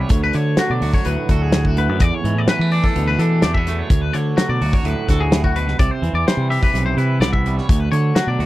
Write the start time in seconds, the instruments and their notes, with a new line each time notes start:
0.00 clean electric guitar C#5
0.09 clean electric guitar D2, fingered electric bass D2, kick, closed hi-hat
0.24 clean electric guitar B4
0.33 clean electric guitar D3 C#5, fingered electric bass D3, closed hi-hat
0.57 clean electric guitar F#3 F#4, snare, closed hi-hat
0.70 fingered electric bass B2, clean electric guitar D5
0.81 fingered electric bass D2, clean electric guitar F#4, open hi-hat
0.93 clean electric guitar C#5, kick
1.05 fingered electric bass D2, clean electric guitar A2 B4, closed hi-hat
1.29 fingered electric bass D2, clean electric guitar F#4 A4, kick, closed hi-hat
1.42 clean electric guitar G#4
1.52 snare, closed hi-hat
1.65 clean electric guitar F#4, kick
1.77 clean electric guitar D2 B4, closed hi-hat
1.89 fingered electric bass F#2
1.99 fingered electric bass E2, clean electric guitar E2 D5, kick, closed hi-hat
2.14 clean electric guitar C#5
2.24 fingered electric bass G#2, clean electric guitar E3, closed hi-hat
2.36 fingered electric bass A2, clean electric guitar D5
2.48 clean electric guitar F#3 B4, snare, closed hi-hat
2.59 fingered electric bass E3, clean electric guitar A3
2.71 clean electric guitar D4 D5, open hi-hat
2.84 clean electric guitar A4, kick
2.95 fingered electric bass D2, clean electric guitar B2, closed hi-hat
3.07 clean electric guitar B4
3.19 fingered electric bass E3, clean electric guitar D4 A4, closed hi-hat
3.42 fingered electric bass E2, clean electric guitar A3 D5, snare, closed hi-hat
3.54 clean electric guitar B3 E5, kick
3.67 clean electric guitar A3, snare, closed hi-hat
3.79 clean electric guitar C#5
3.90 fingered electric bass D2, clean electric guitar D2, kick, closed hi-hat
4.02 clean electric guitar B4
4.13 fingered electric bass D3, clean electric guitar D3 C#5, closed hi-hat
4.37 clean electric guitar F#3 F#4, snare, closed hi-hat
4.49 fingered electric bass B2, clean electric guitar D5
4.61 fingered electric bass D2, clean electric guitar F#4, open hi-hat
4.73 clean electric guitar C#5, kick
4.83 fingered electric bass D2, clean electric guitar A2 B4, closed hi-hat
5.08 fingered electric bass D2, clean electric guitar F#4 A4, kick, snare, closed hi-hat
5.21 clean electric guitar G#4
5.31 clean electric guitar A2, snare, closed hi-hat
5.44 clean electric guitar F#4, kick
5.56 clean electric guitar B2 B4, closed hi-hat
5.67 fingered electric bass C#2, snare
5.79 fingered electric bass C2, clean electric guitar C3 D5, kick, closed hi-hat
5.91 clean electric guitar C5
6.02 fingered electric bass E2, clean electric guitar E3, closed hi-hat
6.13 fingered electric bass E2, clean electric guitar D5
6.28 clean electric guitar G3 C5, snare, closed hi-hat
6.37 fingered electric bass C3
6.50 clean electric guitar G4 E5, open hi-hat
6.63 clean electric guitar B4, kick
6.74 fingered electric bass B1, clean electric guitar C3, closed hi-hat
6.86 clean electric guitar C5
6.97 fingered electric bass C3, clean electric guitar E4 B4, closed hi-hat
7.20 fingered electric bass C2, clean electric guitar B3 D5, snare, closed hi-hat
7.33 clean electric guitar E5, kick
7.46 clean electric guitar G3, closed hi-hat
7.57 clean electric guitar C#5, snare
7.69 fingered electric bass D2, clean electric guitar D2, kick, closed hi-hat
7.80 clean electric guitar B4
7.92 fingered electric bass D3, clean electric guitar D3 C#5, closed hi-hat
8.15 clean electric guitar F#3 F#4, snare, closed hi-hat
8.27 fingered electric bass B2, clean electric guitar D5
8.39 fingered electric bass D2, clean electric guitar F#4, open hi-hat